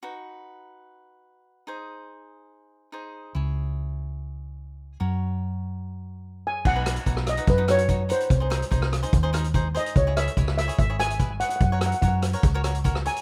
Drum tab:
CC |----------------|----------------|----------------|----------------|
HH |----------------|----------------|----------------|----------------|
SD |----------------|----------------|----------------|----------------|
BD |----------------|----------------|----------------|----------------|

CC |x---------------|----------------|----------------|----------------|
HH |--xxx-xxx-xxx-xx|x-xxx-xxx-xxx-xx|x-xxx-xxx-xxx-xx|x-xxx-xxx-xxx-xx|
SD |--r--rr---r-----|--r--rr---r-----|--r--rr---r-----|--r---r---r--r--|
BD |o---o---o---o---|o---o---o---o---|o---o---o---o---|o---o---o---o---|